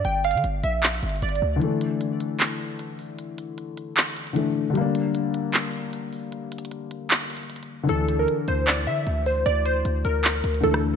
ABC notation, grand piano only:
X:1
M:4/4
L:1/8
Q:1/4=153
K:Gdor
V:1 name="Grand piano" clef=bass
z8 | [D,E,A,D]8- | [D,E,A,D]6 [D,E,A,D]2 | [D,G,B,D]8- |
[D,G,B,D]8 | [D,E,D]8- | [D,E,D]6 [D,E,A,D]2 |]